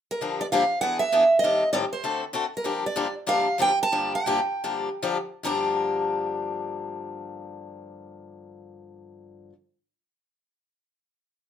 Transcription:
0.11 0.41 A#4 medium
0.21 0.40 G2 medium
0.21 0.41 D3 medium
0.21 0.41 F3 medium
0.21 0.41 A#3 medium
0.21 0.41 D4 medium
0.21 0.41 G4 medium
0.41 0.46 D5 medium
0.52 0.62 G2 medium
0.52 0.63 D3 medium
0.52 0.63 F3 medium
0.52 0.63 A#3 medium
0.52 0.63 D4 medium
0.52 0.63 G4 medium
0.52 0.81 F5 medium
0.81 1.02 E3 medium
0.81 1.02 B3 medium
0.81 1.02 D4 medium
0.81 1.02 G#4 medium
0.81 0.99 F#5 medium
0.99 1.39 E5 medium
1.12 1.23 E3 medium
1.12 1.23 B3 medium
1.12 1.23 D4 medium
1.12 1.23 G#4 medium
1.39 1.69 D#5 medium
1.44 1.63 A2 medium
1.44 1.63 D#3 medium
1.44 1.63 G3 medium
1.44 1.63 C4 medium
1.44 1.63 G4 medium
1.44 1.63 A4 medium
1.73 1.83 A2 medium
1.73 1.84 D#3 medium
1.73 1.84 G3 medium
1.73 1.84 C4 medium
1.73 1.84 G4 medium
1.73 1.84 A4 medium
1.73 1.78 D5 medium
1.93 2.20 C5 medium
2.04 2.23 D3 medium
2.04 2.23 A3 medium
2.04 2.23 C4 medium
2.04 2.23 F#4 medium
2.04 2.24 A4 medium
2.33 2.44 D3 medium
2.33 2.44 A3 medium
2.33 2.44 C4 medium
2.33 2.45 F#4 medium
2.33 2.45 A4 medium
2.57 2.83 A#4 medium
2.64 2.84 G2 medium
2.64 2.84 D3 medium
2.64 2.84 F3 medium
2.64 2.84 A#3 medium
2.64 2.84 D4 medium
2.64 2.85 G4 medium
2.86 3.13 D5 medium
2.96 3.06 G2 medium
2.96 3.06 D3 medium
2.96 3.06 F3 medium
2.96 3.07 A#3 medium
2.96 3.07 D4 medium
2.96 3.07 G4 medium
3.27 3.47 G2 medium
3.27 3.47 D3 medium
3.27 3.47 F3 medium
3.27 3.47 A#3 medium
3.27 3.47 D4 medium
3.27 3.47 G4 medium
3.27 3.57 F5 medium
3.58 3.70 G2 medium
3.58 3.70 D3 medium
3.58 3.70 F3 medium
3.58 3.70 A#3 medium
3.58 3.71 D4 medium
3.58 3.71 G4 medium
3.58 3.78 G5 medium
3.83 4.12 A5 loud
3.92 4.14 G2 medium
3.92 4.14 D3 medium
3.92 4.14 F3 medium
3.92 4.14 A#3 medium
3.92 4.14 D4 medium
3.92 4.14 G4 medium
4.15 5.24 G5 medium
4.26 4.39 G2 medium
4.26 4.39 D3 medium
4.26 4.39 F3 medium
4.26 4.39 A#3 medium
4.26 4.39 D4 medium
4.26 4.39 G4 medium
4.64 4.88 G2 medium
4.64 4.88 D3 medium
4.64 4.88 F3 medium
4.64 4.88 A#3 medium
4.64 4.89 D4 medium
4.64 4.89 G4 medium
5.02 5.16 G2 medium
5.02 5.17 D3 medium
5.02 5.17 F3 medium
5.02 5.17 A#3 medium
5.02 5.17 D4 medium
5.02 5.17 G4 medium
5.43 9.52 G2 medium
5.43 9.53 D3 medium
5.43 9.53 F3 medium
5.43 9.54 A#3 medium
5.43 9.55 D4 medium
5.43 9.55 G4 medium
5.43 9.49 A#5 medium

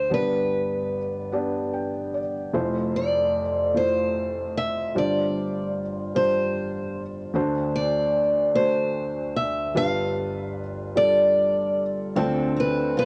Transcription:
0.00 0.13 A3 medium
0.00 0.10 D4 soft
0.00 0.14 E4 soft
0.00 0.13 C5 medium
0.00 0.12 D5 medium
0.10 2.50 G1 soft
0.10 2.50 G2 soft
0.10 0.97 B3 medium
0.10 0.97 D4 medium
0.10 0.97 G4 medium
0.10 0.97 D5 medium
0.14 2.11 B4 medium
1.32 2.19 B3 medium
1.32 2.19 D4 medium
1.32 2.19 G4 medium
1.32 2.13 D5 medium
1.73 2.11 G5 medium
2.14 2.52 D5 medium
2.53 4.91 F1 medium
2.53 4.91 F2 medium
2.53 3.40 A3 medium
2.53 3.40 E4 medium
2.53 3.40 F4 medium
2.53 3.40 C5 medium
2.96 3.77 D5 medium
3.74 4.60 A3 medium
3.74 4.60 E4 soft
3.74 4.61 F4 soft
3.74 4.61 C5 medium
3.74 4.57 C5 medium
4.58 4.98 E5 medium
4.95 7.31 G1 medium
4.95 7.31 G2 soft
4.95 5.81 G3 medium
4.95 5.81 D4 medium
4.95 5.81 F4 medium
4.95 5.81 C5 medium
4.95 5.73 D5 medium
6.15 7.00 G3 medium
6.15 7.00 D4 soft
6.15 7.01 F4 medium
6.15 7.02 C5 medium
6.15 7.01 C5 medium
7.34 9.70 D2 medium
7.34 9.70 D3 medium
7.34 8.20 A3 medium
7.34 8.20 D4 medium
7.34 8.20 F#4 medium
7.34 8.20 C5 medium
7.76 8.51 D5 medium
8.55 9.40 A3 medium
8.55 9.40 D4 medium
8.55 9.40 F#4 medium
8.55 9.36 C5 medium
8.55 9.40 C5 medium
9.36 9.77 E5 medium
9.75 12.12 G1 medium
9.75 12.12 G2 soft
9.75 10.60 G3 medium
9.75 10.60 D4 medium
9.75 10.61 F4 medium
9.75 10.61 B4 medium
9.75 10.52 F5 medium
10.96 11.81 G3 medium
10.96 11.81 D4 medium
10.96 11.81 F4 medium
10.96 11.81 A4 medium
10.96 11.83 D5 medium
12.16 13.05 D2 medium
12.16 13.05 D3 medium
12.16 13.01 A3 medium
12.16 12.56 C4 medium
12.16 13.02 C4 medium
12.16 13.02 D4 medium
12.16 13.02 F4 medium
12.16 13.05 A4 medium
12.56 13.05 C4 medium
12.56 12.95 B4 medium
12.97 13.05 F4 medium
12.97 13.05 C5 medium

